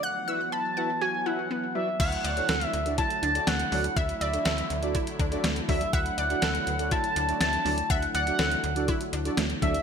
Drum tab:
CC |----------------|x---------------|----------------|----------------|
HH |----------------|xxxxxxxxxxxxxxox|xxxxxxxxxxxxxxox|xxxxxxxxxxxxxxox|
SD |----------------|----o-------o---|----o-------o---|----o-------o---|
BD |----------------|o-------o-------|o-------o-o---o-|o-------o-------|

CC |----------------|
HH |xxxxxxxxxxxxxxxx|
SD |----o-------o---|
BD |o-------o-----o-|